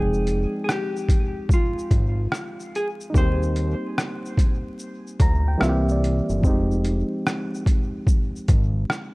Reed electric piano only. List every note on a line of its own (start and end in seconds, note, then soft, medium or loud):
0.00 3.08 F3 medium
0.00 3.09 G#3 medium
0.00 3.10 C4 soft
0.00 3.09 D#4 medium
0.00 3.12 G5 medium
3.10 5.56 G3 medium
3.10 5.55 D#4 medium
3.14 5.57 A#3 soft
3.14 5.58 C4 medium
3.19 5.59 G4 medium
5.22 5.46 A#5 medium
5.48 5.61 G5 medium
5.58 6.42 E3 medium
5.58 6.42 G3 medium
5.58 6.43 A#3 medium
5.58 6.43 C4 medium
5.58 5.86 E5 medium
5.63 5.70 F4 medium
5.69 6.47 G4 medium
5.92 6.41 D5 medium
6.40 9.14 F3 medium
6.40 9.14 G#3 medium
6.45 9.14 C4 medium
6.45 9.14 D#4 medium
6.50 9.14 G4 medium